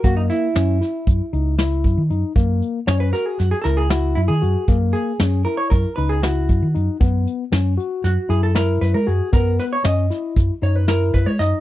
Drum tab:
HH |xxxxxxxxx|xxxxxxxxx|xxxxxxxxx|xxxxxxxxx|
SD |-ooo--o--|--ooooo--|--o---o--|--o-o-oo-|
BD |o---o--o-|o--------|o---o--o-|o--------|

HH |xxxxxxxxx|
SD |-ooo--o-o|
BD |o---o--o-|